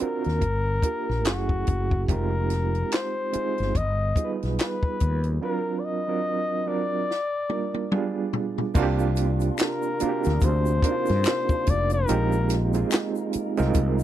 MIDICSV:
0, 0, Header, 1, 7, 480
1, 0, Start_track
1, 0, Tempo, 833333
1, 1200, Time_signature, 4, 2, 24, 8
1, 8084, End_track
2, 0, Start_track
2, 0, Title_t, "Flugelhorn"
2, 0, Program_c, 0, 56
2, 16, Note_on_c, 0, 70, 98
2, 728, Note_off_c, 0, 70, 0
2, 737, Note_on_c, 0, 66, 85
2, 1185, Note_off_c, 0, 66, 0
2, 1215, Note_on_c, 0, 70, 84
2, 1692, Note_on_c, 0, 72, 91
2, 1701, Note_off_c, 0, 70, 0
2, 2172, Note_on_c, 0, 75, 82
2, 2180, Note_off_c, 0, 72, 0
2, 2505, Note_off_c, 0, 75, 0
2, 2654, Note_on_c, 0, 71, 74
2, 3104, Note_off_c, 0, 71, 0
2, 3134, Note_on_c, 0, 70, 76
2, 3337, Note_on_c, 0, 74, 61
2, 3346, Note_off_c, 0, 70, 0
2, 3368, Note_on_c, 0, 75, 92
2, 3377, Note_off_c, 0, 74, 0
2, 3847, Note_on_c, 0, 74, 93
2, 3856, Note_off_c, 0, 75, 0
2, 4804, Note_off_c, 0, 74, 0
2, 5527, Note_on_c, 0, 70, 85
2, 6016, Note_on_c, 0, 72, 96
2, 6024, Note_off_c, 0, 70, 0
2, 6738, Note_on_c, 0, 74, 103
2, 6747, Note_off_c, 0, 72, 0
2, 6870, Note_off_c, 0, 74, 0
2, 6873, Note_on_c, 0, 70, 99
2, 7324, Note_off_c, 0, 70, 0
2, 8084, End_track
3, 0, Start_track
3, 0, Title_t, "Reed electric piano"
3, 0, Program_c, 1, 4
3, 0, Control_c, 1, 64, 127
3, 0, Note_on_c, 1, 60, 61
3, 0, Note_on_c, 1, 62, 46
3, 0, Note_on_c, 1, 65, 52
3, 0, Note_on_c, 1, 66, 47
3, 0, Note_on_c, 1, 70, 83
3, 0, Note_on_c, 1, 72, 64
3, 2, Note_off_c, 1, 60, 0
3, 2, Note_on_c, 1, 60, 62
3, 4, Note_off_c, 1, 62, 0
3, 4, Note_on_c, 1, 62, 55
3, 6, Note_off_c, 1, 65, 0
3, 6, Note_off_c, 1, 66, 0
3, 6, Note_on_c, 1, 65, 52
3, 6, Note_on_c, 1, 66, 53
3, 11, Note_off_c, 1, 70, 0
3, 11, Note_on_c, 1, 70, 67
3, 241, Note_off_c, 1, 60, 0
3, 242, Note_off_c, 1, 62, 0
3, 243, Note_off_c, 1, 65, 0
3, 243, Note_off_c, 1, 66, 0
3, 246, Note_off_c, 1, 70, 0
3, 246, Control_c, 1, 64, 0
3, 249, Note_off_c, 1, 72, 0
3, 352, Control_c, 1, 64, 127
3, 480, Note_on_c, 1, 58, 57
3, 482, Note_on_c, 1, 62, 50
3, 485, Note_on_c, 1, 65, 54
3, 489, Note_on_c, 1, 67, 57
3, 490, Note_on_c, 1, 70, 67
3, 720, Note_off_c, 1, 58, 0
3, 720, Note_on_c, 1, 57, 68
3, 721, Note_off_c, 1, 62, 0
3, 722, Note_off_c, 1, 65, 0
3, 722, Note_on_c, 1, 61, 63
3, 722, Note_on_c, 1, 64, 61
3, 725, Note_off_c, 1, 67, 0
3, 725, Note_off_c, 1, 70, 0
3, 726, Note_on_c, 1, 66, 64
3, 727, Control_c, 1, 64, 0
3, 729, Note_on_c, 1, 68, 73
3, 822, Control_c, 1, 64, 127
3, 1124, Note_off_c, 1, 57, 0
3, 1125, Note_off_c, 1, 61, 0
3, 1125, Note_off_c, 1, 64, 0
3, 1127, Note_off_c, 1, 66, 0
3, 1129, Note_off_c, 1, 68, 0
3, 1201, Note_on_c, 1, 55, 64
3, 1202, Note_on_c, 1, 60, 73
3, 1205, Note_on_c, 1, 63, 72
3, 1208, Control_c, 1, 64, 0
3, 1209, Note_on_c, 1, 65, 80
3, 1209, Note_on_c, 1, 67, 82
3, 1244, Note_off_c, 1, 55, 0
3, 1296, Control_c, 1, 64, 127
3, 1801, Note_off_c, 1, 60, 0
3, 1803, Note_off_c, 1, 63, 0
3, 1805, Note_off_c, 1, 65, 0
3, 1805, Note_off_c, 1, 67, 0
3, 1914, Note_on_c, 1, 56, 63
3, 1918, Note_on_c, 1, 60, 57
3, 1919, Note_on_c, 1, 63, 57
3, 1922, Note_on_c, 1, 65, 54
3, 1927, Note_on_c, 1, 68, 68
3, 2157, Note_off_c, 1, 56, 0
3, 2159, Note_off_c, 1, 60, 0
3, 2160, Note_off_c, 1, 63, 0
3, 2161, Note_off_c, 1, 65, 0
3, 2163, Note_off_c, 1, 68, 0
3, 2168, Control_c, 1, 64, 0
3, 2259, Control_c, 1, 64, 127
3, 2396, Note_on_c, 1, 55, 59
3, 2401, Note_on_c, 1, 59, 57
3, 2403, Note_on_c, 1, 63, 63
3, 2404, Note_on_c, 1, 65, 60
3, 2408, Note_on_c, 1, 68, 54
3, 2446, Note_on_c, 1, 71, 75
3, 2448, Note_off_c, 1, 68, 0
3, 2998, Note_off_c, 1, 55, 0
3, 3001, Note_off_c, 1, 59, 0
3, 3002, Note_off_c, 1, 63, 0
3, 3002, Note_off_c, 1, 65, 0
3, 3024, Note_off_c, 1, 71, 0
3, 3118, Note_on_c, 1, 54, 77
3, 3120, Note_on_c, 1, 60, 68
3, 3123, Note_on_c, 1, 62, 74
3, 3125, Note_on_c, 1, 65, 71
3, 3128, Control_c, 1, 64, 0
3, 3129, Note_on_c, 1, 70, 83
3, 3233, Control_c, 1, 64, 127
3, 3419, Note_off_c, 1, 54, 0
3, 3420, Note_off_c, 1, 60, 0
3, 3422, Note_off_c, 1, 62, 0
3, 3423, Note_off_c, 1, 65, 0
3, 3425, Note_off_c, 1, 70, 0
3, 3501, Note_on_c, 1, 54, 57
3, 3502, Note_on_c, 1, 60, 57
3, 3505, Note_on_c, 1, 62, 53
3, 3508, Note_on_c, 1, 65, 54
3, 3509, Note_on_c, 1, 70, 60
3, 3783, Note_off_c, 1, 54, 0
3, 3784, Note_off_c, 1, 60, 0
3, 3785, Note_off_c, 1, 62, 0
3, 3787, Note_off_c, 1, 65, 0
3, 3787, Note_off_c, 1, 70, 0
3, 3836, Note_on_c, 1, 54, 61
3, 3838, Note_on_c, 1, 60, 58
3, 3842, Note_on_c, 1, 62, 57
3, 3843, Note_on_c, 1, 65, 55
3, 3846, Note_on_c, 1, 70, 68
3, 4078, Note_off_c, 1, 54, 0
3, 4079, Note_off_c, 1, 60, 0
3, 4081, Note_off_c, 1, 62, 0
3, 4081, Note_off_c, 1, 65, 0
3, 4083, Note_off_c, 1, 70, 0
3, 4088, Control_c, 1, 64, 0
3, 4175, Control_c, 1, 64, 127
3, 4319, Note_on_c, 1, 55, 56
3, 4321, Note_on_c, 1, 58, 52
3, 4324, Note_on_c, 1, 62, 52
3, 4327, Note_on_c, 1, 65, 50
3, 4329, Note_on_c, 1, 70, 67
3, 4556, Note_off_c, 1, 55, 0
3, 4560, Note_off_c, 1, 58, 0
3, 4560, Note_off_c, 1, 62, 0
3, 4563, Note_off_c, 1, 65, 0
3, 4563, Note_on_c, 1, 55, 79
3, 4564, Note_on_c, 1, 59, 74
3, 4565, Note_off_c, 1, 70, 0
3, 4567, Control_c, 1, 64, 0
3, 4567, Note_on_c, 1, 62, 74
3, 4570, Note_on_c, 1, 65, 79
3, 4572, Note_on_c, 1, 68, 80
3, 4676, Control_c, 1, 64, 127
3, 4966, Note_off_c, 1, 55, 0
3, 4967, Note_off_c, 1, 59, 0
3, 4968, Note_off_c, 1, 62, 0
3, 4969, Note_off_c, 1, 65, 0
3, 4970, Note_off_c, 1, 68, 0
3, 5038, Note_on_c, 1, 58, 117
3, 5041, Note_on_c, 1, 60, 92
3, 5043, Note_on_c, 1, 62, 100
3, 5044, Note_on_c, 1, 65, 96
3, 5046, Control_c, 1, 64, 0
3, 5047, Note_on_c, 1, 66, 98
3, 5084, Note_on_c, 1, 67, 120
3, 5087, Note_off_c, 1, 66, 0
3, 5164, Control_c, 1, 64, 127
3, 5640, Note_off_c, 1, 58, 0
3, 5641, Note_off_c, 1, 60, 0
3, 5642, Note_off_c, 1, 62, 0
3, 5643, Note_off_c, 1, 65, 0
3, 5663, Note_off_c, 1, 67, 0
3, 5763, Note_on_c, 1, 58, 77
3, 5766, Note_on_c, 1, 62, 66
3, 5767, Note_on_c, 1, 60, 66
3, 5771, Note_on_c, 1, 65, 72
3, 5772, Note_on_c, 1, 66, 57
3, 5810, Note_off_c, 1, 66, 0
3, 5810, Note_on_c, 1, 67, 74
3, 6166, Note_off_c, 1, 58, 0
3, 6167, Note_off_c, 1, 62, 0
3, 6168, Note_off_c, 1, 60, 0
3, 6170, Note_off_c, 1, 65, 0
3, 6190, Note_off_c, 1, 67, 0
3, 6240, Note_on_c, 1, 58, 65
3, 6241, Note_on_c, 1, 60, 59
3, 6246, Note_on_c, 1, 62, 64
3, 6248, Note_on_c, 1, 63, 54
3, 6250, Note_on_c, 1, 70, 78
3, 6285, Note_on_c, 1, 65, 64
3, 6288, Note_off_c, 1, 63, 0
3, 6841, Note_off_c, 1, 58, 0
3, 6841, Note_off_c, 1, 60, 0
3, 6843, Note_off_c, 1, 62, 0
3, 6846, Note_off_c, 1, 70, 0
3, 6863, Note_off_c, 1, 65, 0
3, 6962, Note_on_c, 1, 56, 96
3, 6964, Note_on_c, 1, 60, 79
3, 6964, Note_on_c, 1, 63, 93
3, 6966, Control_c, 1, 64, 0
3, 6967, Note_on_c, 1, 65, 84
3, 6971, Note_on_c, 1, 67, 96
3, 7060, Control_c, 1, 64, 127
3, 7261, Note_off_c, 1, 56, 0
3, 7262, Note_off_c, 1, 60, 0
3, 7262, Note_off_c, 1, 63, 0
3, 7264, Note_off_c, 1, 65, 0
3, 7266, Note_off_c, 1, 67, 0
3, 7336, Note_on_c, 1, 56, 69
3, 7339, Note_on_c, 1, 60, 64
3, 7340, Note_on_c, 1, 63, 63
3, 7343, Note_on_c, 1, 65, 59
3, 7348, Note_on_c, 1, 68, 74
3, 7711, Note_off_c, 1, 56, 0
3, 7712, Note_off_c, 1, 60, 0
3, 7713, Note_off_c, 1, 63, 0
3, 7715, Note_off_c, 1, 65, 0
3, 7717, Note_off_c, 1, 68, 0
3, 7818, Note_on_c, 1, 56, 85
3, 7820, Note_on_c, 1, 60, 83
3, 7823, Note_on_c, 1, 63, 78
3, 7825, Note_on_c, 1, 65, 82
3, 7829, Note_on_c, 1, 70, 97
3, 8084, Note_off_c, 1, 56, 0
3, 8084, Note_off_c, 1, 60, 0
3, 8084, Note_off_c, 1, 63, 0
3, 8084, Note_off_c, 1, 65, 0
3, 8084, Note_off_c, 1, 70, 0
3, 8084, End_track
4, 0, Start_track
4, 0, Title_t, "Tonewheel organ"
4, 0, Program_c, 2, 16
4, 5035, Note_on_c, 2, 48, 66
4, 5035, Note_on_c, 2, 65, 72
4, 5036, Note_on_c, 2, 62, 62
4, 5037, Note_on_c, 2, 58, 62
4, 6938, Note_off_c, 2, 48, 0
4, 6938, Note_off_c, 2, 65, 0
4, 6939, Note_off_c, 2, 58, 0
4, 6939, Note_off_c, 2, 62, 0
4, 6962, Note_on_c, 2, 63, 76
4, 6963, Note_on_c, 2, 56, 70
4, 6963, Note_on_c, 2, 58, 60
4, 8084, Note_off_c, 2, 56, 0
4, 8084, Note_off_c, 2, 58, 0
4, 8084, Note_off_c, 2, 63, 0
4, 8084, End_track
5, 0, Start_track
5, 0, Title_t, "Fretless electric bass"
5, 0, Program_c, 3, 35
5, 151, Note_on_c, 3, 39, 65
5, 234, Note_off_c, 3, 39, 0
5, 245, Note_on_c, 3, 31, 90
5, 455, Note_off_c, 3, 31, 0
5, 630, Note_on_c, 3, 34, 69
5, 732, Note_off_c, 3, 34, 0
5, 732, Note_on_c, 3, 30, 92
5, 939, Note_off_c, 3, 30, 0
5, 972, Note_on_c, 3, 30, 78
5, 1179, Note_off_c, 3, 30, 0
5, 1206, Note_on_c, 3, 29, 97
5, 1628, Note_off_c, 3, 29, 0
5, 2073, Note_on_c, 3, 31, 73
5, 2155, Note_off_c, 3, 31, 0
5, 2165, Note_on_c, 3, 31, 87
5, 2375, Note_off_c, 3, 31, 0
5, 2554, Note_on_c, 3, 35, 60
5, 2636, Note_off_c, 3, 35, 0
5, 2893, Note_on_c, 3, 39, 80
5, 3099, Note_off_c, 3, 39, 0
5, 5047, Note_on_c, 3, 36, 92
5, 5468, Note_off_c, 3, 36, 0
5, 5914, Note_on_c, 3, 38, 97
5, 5996, Note_off_c, 3, 38, 0
5, 6006, Note_on_c, 3, 38, 100
5, 6215, Note_off_c, 3, 38, 0
5, 6393, Note_on_c, 3, 43, 89
5, 6475, Note_off_c, 3, 43, 0
5, 6732, Note_on_c, 3, 29, 85
5, 6939, Note_off_c, 3, 29, 0
5, 6970, Note_on_c, 3, 34, 101
5, 7390, Note_off_c, 3, 34, 0
5, 7832, Note_on_c, 3, 36, 88
5, 7915, Note_off_c, 3, 36, 0
5, 7924, Note_on_c, 3, 36, 99
5, 8084, Note_off_c, 3, 36, 0
5, 8084, End_track
6, 0, Start_track
6, 0, Title_t, "Muted fretless electric bass strokes"
6, 11, Note_on_c, 9, 29, 43
6, 69, Note_off_c, 9, 29, 0
6, 1931, Note_on_c, 9, 29, 43
6, 1989, Note_off_c, 9, 29, 0
6, 5772, Note_on_c, 9, 29, 46
6, 5830, Note_off_c, 9, 29, 0
6, 7691, Note_on_c, 9, 29, 50
6, 7749, Note_off_c, 9, 29, 0
6, 8084, End_track
7, 0, Start_track
7, 0, Title_t, "Drums"
7, 0, Note_on_c, 9, 42, 56
7, 56, Note_off_c, 9, 42, 0
7, 140, Note_on_c, 9, 42, 28
7, 163, Note_on_c, 9, 38, 27
7, 197, Note_off_c, 9, 42, 0
7, 221, Note_off_c, 9, 38, 0
7, 239, Note_on_c, 9, 36, 67
7, 240, Note_on_c, 9, 42, 56
7, 297, Note_off_c, 9, 36, 0
7, 297, Note_off_c, 9, 42, 0
7, 475, Note_on_c, 9, 36, 74
7, 479, Note_on_c, 9, 42, 66
7, 532, Note_off_c, 9, 36, 0
7, 537, Note_off_c, 9, 42, 0
7, 635, Note_on_c, 9, 38, 28
7, 693, Note_off_c, 9, 38, 0
7, 718, Note_on_c, 9, 42, 69
7, 727, Note_on_c, 9, 39, 75
7, 732, Note_on_c, 9, 38, 96
7, 775, Note_off_c, 9, 42, 0
7, 785, Note_off_c, 9, 39, 0
7, 789, Note_off_c, 9, 38, 0
7, 859, Note_on_c, 9, 36, 79
7, 917, Note_off_c, 9, 36, 0
7, 960, Note_on_c, 9, 42, 56
7, 966, Note_on_c, 9, 36, 88
7, 1018, Note_off_c, 9, 42, 0
7, 1024, Note_off_c, 9, 36, 0
7, 1102, Note_on_c, 9, 36, 78
7, 1159, Note_off_c, 9, 36, 0
7, 1200, Note_on_c, 9, 36, 98
7, 1203, Note_on_c, 9, 42, 64
7, 1258, Note_off_c, 9, 36, 0
7, 1261, Note_off_c, 9, 42, 0
7, 1440, Note_on_c, 9, 42, 62
7, 1451, Note_on_c, 9, 38, 30
7, 1497, Note_off_c, 9, 42, 0
7, 1509, Note_off_c, 9, 38, 0
7, 1582, Note_on_c, 9, 42, 28
7, 1640, Note_off_c, 9, 42, 0
7, 1679, Note_on_c, 9, 42, 66
7, 1690, Note_on_c, 9, 39, 73
7, 1694, Note_on_c, 9, 38, 93
7, 1737, Note_off_c, 9, 42, 0
7, 1747, Note_off_c, 9, 39, 0
7, 1752, Note_off_c, 9, 38, 0
7, 1920, Note_on_c, 9, 42, 63
7, 1977, Note_off_c, 9, 42, 0
7, 2061, Note_on_c, 9, 42, 27
7, 2084, Note_on_c, 9, 38, 27
7, 2119, Note_off_c, 9, 42, 0
7, 2142, Note_off_c, 9, 38, 0
7, 2159, Note_on_c, 9, 36, 69
7, 2161, Note_on_c, 9, 42, 57
7, 2217, Note_off_c, 9, 36, 0
7, 2218, Note_off_c, 9, 42, 0
7, 2395, Note_on_c, 9, 36, 81
7, 2400, Note_on_c, 9, 42, 66
7, 2452, Note_off_c, 9, 36, 0
7, 2457, Note_off_c, 9, 42, 0
7, 2549, Note_on_c, 9, 42, 31
7, 2556, Note_on_c, 9, 38, 29
7, 2607, Note_off_c, 9, 42, 0
7, 2614, Note_off_c, 9, 38, 0
7, 2641, Note_on_c, 9, 42, 66
7, 2651, Note_on_c, 9, 39, 74
7, 2655, Note_on_c, 9, 38, 94
7, 2699, Note_off_c, 9, 42, 0
7, 2708, Note_off_c, 9, 39, 0
7, 2713, Note_off_c, 9, 38, 0
7, 2780, Note_on_c, 9, 36, 85
7, 2838, Note_off_c, 9, 36, 0
7, 2881, Note_on_c, 9, 42, 61
7, 2886, Note_on_c, 9, 36, 85
7, 2938, Note_off_c, 9, 42, 0
7, 2944, Note_off_c, 9, 36, 0
7, 3015, Note_on_c, 9, 42, 33
7, 3073, Note_off_c, 9, 42, 0
7, 4094, Note_on_c, 9, 38, 46
7, 4151, Note_off_c, 9, 38, 0
7, 4317, Note_on_c, 9, 48, 64
7, 4375, Note_off_c, 9, 48, 0
7, 4460, Note_on_c, 9, 48, 56
7, 4518, Note_off_c, 9, 48, 0
7, 4560, Note_on_c, 9, 47, 77
7, 4617, Note_off_c, 9, 47, 0
7, 4800, Note_on_c, 9, 43, 90
7, 4857, Note_off_c, 9, 43, 0
7, 4942, Note_on_c, 9, 43, 72
7, 5000, Note_off_c, 9, 43, 0
7, 5040, Note_on_c, 9, 36, 103
7, 5040, Note_on_c, 9, 49, 89
7, 5042, Note_on_c, 9, 82, 67
7, 5098, Note_off_c, 9, 36, 0
7, 5098, Note_off_c, 9, 49, 0
7, 5099, Note_off_c, 9, 82, 0
7, 5180, Note_on_c, 9, 82, 45
7, 5238, Note_off_c, 9, 82, 0
7, 5277, Note_on_c, 9, 82, 46
7, 5281, Note_on_c, 9, 42, 76
7, 5335, Note_off_c, 9, 82, 0
7, 5339, Note_off_c, 9, 42, 0
7, 5414, Note_on_c, 9, 82, 42
7, 5423, Note_on_c, 9, 42, 33
7, 5472, Note_off_c, 9, 82, 0
7, 5481, Note_off_c, 9, 42, 0
7, 5517, Note_on_c, 9, 26, 65
7, 5517, Note_on_c, 9, 82, 59
7, 5521, Note_on_c, 9, 42, 78
7, 5531, Note_on_c, 9, 39, 87
7, 5536, Note_on_c, 9, 38, 103
7, 5575, Note_off_c, 9, 26, 0
7, 5575, Note_off_c, 9, 82, 0
7, 5578, Note_off_c, 9, 42, 0
7, 5589, Note_off_c, 9, 39, 0
7, 5593, Note_off_c, 9, 38, 0
7, 5659, Note_on_c, 9, 82, 42
7, 5717, Note_off_c, 9, 82, 0
7, 5759, Note_on_c, 9, 42, 68
7, 5761, Note_on_c, 9, 82, 54
7, 5817, Note_off_c, 9, 42, 0
7, 5819, Note_off_c, 9, 82, 0
7, 5899, Note_on_c, 9, 82, 43
7, 5900, Note_on_c, 9, 42, 32
7, 5924, Note_on_c, 9, 38, 30
7, 5956, Note_off_c, 9, 82, 0
7, 5958, Note_off_c, 9, 42, 0
7, 5981, Note_off_c, 9, 38, 0
7, 5995, Note_on_c, 9, 82, 70
7, 6000, Note_on_c, 9, 36, 80
7, 6001, Note_on_c, 9, 42, 68
7, 6052, Note_off_c, 9, 82, 0
7, 6057, Note_off_c, 9, 36, 0
7, 6059, Note_off_c, 9, 42, 0
7, 6138, Note_on_c, 9, 82, 45
7, 6196, Note_off_c, 9, 82, 0
7, 6235, Note_on_c, 9, 36, 91
7, 6241, Note_on_c, 9, 42, 82
7, 6293, Note_off_c, 9, 36, 0
7, 6299, Note_off_c, 9, 42, 0
7, 6371, Note_on_c, 9, 82, 41
7, 6390, Note_on_c, 9, 42, 37
7, 6397, Note_on_c, 9, 38, 37
7, 6429, Note_off_c, 9, 82, 0
7, 6447, Note_off_c, 9, 42, 0
7, 6455, Note_off_c, 9, 38, 0
7, 6475, Note_on_c, 9, 26, 79
7, 6475, Note_on_c, 9, 82, 82
7, 6481, Note_on_c, 9, 42, 80
7, 6490, Note_on_c, 9, 39, 85
7, 6495, Note_on_c, 9, 38, 112
7, 6533, Note_off_c, 9, 26, 0
7, 6533, Note_off_c, 9, 82, 0
7, 6538, Note_off_c, 9, 42, 0
7, 6548, Note_off_c, 9, 39, 0
7, 6552, Note_off_c, 9, 38, 0
7, 6619, Note_on_c, 9, 36, 94
7, 6619, Note_on_c, 9, 82, 42
7, 6677, Note_off_c, 9, 36, 0
7, 6677, Note_off_c, 9, 82, 0
7, 6719, Note_on_c, 9, 42, 69
7, 6725, Note_on_c, 9, 36, 99
7, 6777, Note_off_c, 9, 42, 0
7, 6783, Note_off_c, 9, 36, 0
7, 6853, Note_on_c, 9, 42, 35
7, 6857, Note_on_c, 9, 82, 50
7, 6910, Note_off_c, 9, 42, 0
7, 6914, Note_off_c, 9, 82, 0
7, 6958, Note_on_c, 9, 82, 68
7, 6963, Note_on_c, 9, 42, 73
7, 7015, Note_off_c, 9, 82, 0
7, 7020, Note_off_c, 9, 42, 0
7, 7099, Note_on_c, 9, 82, 45
7, 7156, Note_off_c, 9, 82, 0
7, 7196, Note_on_c, 9, 82, 44
7, 7198, Note_on_c, 9, 42, 79
7, 7210, Note_on_c, 9, 38, 35
7, 7253, Note_off_c, 9, 82, 0
7, 7256, Note_off_c, 9, 42, 0
7, 7268, Note_off_c, 9, 38, 0
7, 7335, Note_on_c, 9, 82, 40
7, 7340, Note_on_c, 9, 42, 35
7, 7393, Note_off_c, 9, 82, 0
7, 7398, Note_off_c, 9, 42, 0
7, 7435, Note_on_c, 9, 26, 67
7, 7435, Note_on_c, 9, 82, 69
7, 7438, Note_on_c, 9, 42, 76
7, 7449, Note_on_c, 9, 39, 84
7, 7453, Note_on_c, 9, 38, 106
7, 7493, Note_off_c, 9, 26, 0
7, 7493, Note_off_c, 9, 82, 0
7, 7496, Note_off_c, 9, 42, 0
7, 7506, Note_off_c, 9, 39, 0
7, 7511, Note_off_c, 9, 38, 0
7, 7576, Note_on_c, 9, 82, 45
7, 7634, Note_off_c, 9, 82, 0
7, 7677, Note_on_c, 9, 42, 66
7, 7680, Note_on_c, 9, 82, 55
7, 7734, Note_off_c, 9, 42, 0
7, 7738, Note_off_c, 9, 82, 0
7, 7817, Note_on_c, 9, 42, 35
7, 7823, Note_on_c, 9, 82, 41
7, 7841, Note_on_c, 9, 38, 28
7, 7875, Note_off_c, 9, 42, 0
7, 7880, Note_off_c, 9, 82, 0
7, 7898, Note_off_c, 9, 38, 0
7, 7917, Note_on_c, 9, 42, 72
7, 7917, Note_on_c, 9, 82, 72
7, 7919, Note_on_c, 9, 36, 74
7, 7975, Note_off_c, 9, 42, 0
7, 7975, Note_off_c, 9, 82, 0
7, 7976, Note_off_c, 9, 36, 0
7, 8059, Note_on_c, 9, 82, 46
7, 8084, Note_off_c, 9, 82, 0
7, 8084, End_track
0, 0, End_of_file